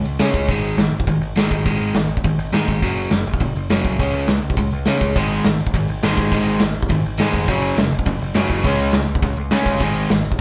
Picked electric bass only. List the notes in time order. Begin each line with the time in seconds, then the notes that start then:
0.05 C#2
0.20 C#3
0.34 C#2
0.48 G#1
0.77 G#1
0.91 G#1
1.07 G#1
1.21 G#1
1.36 G#1
1.51 G#1
1.66 G#1
1.80 G#1
1.95 G#1
2.08 G#1
2.25 G#1
2.38 G#1
2.53 G#2
2.68 G#1
2.83 F#1
3.11 F#1
3.26 F#1
3.41 F#1
3.55 F#1
3.70 F#1
3.84 C2
3.99 C#2
4.13 C#2
4.28 C#2
4.43 C#2
4.57 C#2
4.73 C#2
4.88 C#3
5.01 C#2
5.15 G#1
5.45 G#1
5.60 G#1
5.74 G#1
5.89 G#1
6.04 G#1
6.18 G#1
6.32 G#1
6.47 G#1
6.62 G#1
6.76 G#1
6.90 G#1
7.06 G#1
7.19 G#2
7.34 F1
7.48 F#1
7.77 F#1
7.92 F#1
8.06 F#1
8.21 F#1
8.35 F#1
8.50 F#1
8.65 C#2
8.79 C#2
8.93 C#2
9.09 C#2
9.22 C#2
9.38 C#2
9.52 C#3
9.65 G1
9.81 G#1
10.10 G#1
10.25 G#1